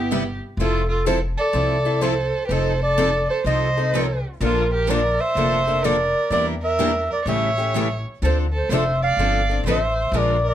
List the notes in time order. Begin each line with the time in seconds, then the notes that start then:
Already playing: G1 B3 E4 G4
0.12 C3 G3 B3 E4 G4
0.57 F1 F3 C4 E4 F4 A4
0.89 F4 A4
1.06 F3 C4 E4 A4 C5
1.37 A4 D5
1.53 C2 F3 C4 E4 A4
1.85 C4 E4 A4
2.01 F3 C4 E4 A4 C5
2.46 F1 G4 B4
2.51 F3 C4 D#4 A4 C5
2.82 A4 D5
2.98 F3 C4 D#4 A4
3.30 A4 C5
3.45 C2 F3 C4 D#4 A4 C5 D#5
3.77 C4 D#4 A4
3.95 F3 C4 D#4 A4
4.40 A#1 D3 F3 A#3 D4 F4 A4 A#4
4.72 G4 A#4
4.90 D3 F3 A#3 D4 A4 A#4 D5
5.20 C5 E5
5.35 F1 D3 F3 A#3 D4 A4
5.67 A#3 D4 A4
5.83 D3 F3 A#3 D4 A4 A#4 D5
6.30 E2 E3 G3 A#3 D4 E4 G4 A#4 D5
6.62 A#4 E5
6.79 E3 G3 A#3 D4 E4 G4 A#4
7.10 A#4 D5
7.26 A1 C#3 E3 G3 A3 C#4 E4 G4 A4 C#5 E5
7.58 A3 C#4 G4
7.74 C#3 E3 G3 A3 C#4 E4 G4 A4
8.22 D2 D3 F3 C4 D4 A4 C5
8.53 A4 C5
8.69 F1 D3 F3 C4 D4 C5 E5
8.74 A4
9.02 D5 F5
9.17 G1 D3 F3 C4 D4 A4
9.50 C4 D4 A4
9.64 A1 D3 F3 C5
9.68 C4 D4 A4 E5
10.12 A#1 D3 F3 G#3 A#3 D4 F4 G#4 A#4
10.18 D5
10.45 A#4 D5